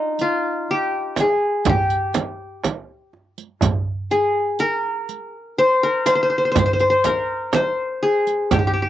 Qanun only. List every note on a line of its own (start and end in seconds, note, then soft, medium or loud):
0.00 1.16 D#4 medium
0.00 0.21 F4 medium
0.21 1.56 F4 medium
0.71 1.26 G4 medium
1.20 1.75 G#4 medium
1.69 3.10 G4 medium
4.11 5.33 G#4 medium
4.60 5.73 A#4 loud
5.59 6.06 C5 loud
5.83 6.97 A#4 medium
6.06 6.15 C5 medium
6.15 6.22 C5 medium
6.23 6.29 C5 medium
6.30 6.38 C5 medium
6.38 6.45 C5 medium
6.45 6.51 C5 medium
6.52 6.58 C5 medium
6.59 6.65 C5 medium
6.66 6.73 C5 medium
6.73 6.80 C5 medium
6.80 6.89 C5 medium
6.90 7.54 C5 medium
7.05 8.18 A#4 medium
7.54 8.60 C5 medium
8.03 8.59 G#4 medium
8.53 8.58 G4 medium
8.59 8.66 G4 medium
8.67 8.72 G4 medium
8.74 8.81 G4 medium
8.82 8.89 G4 medium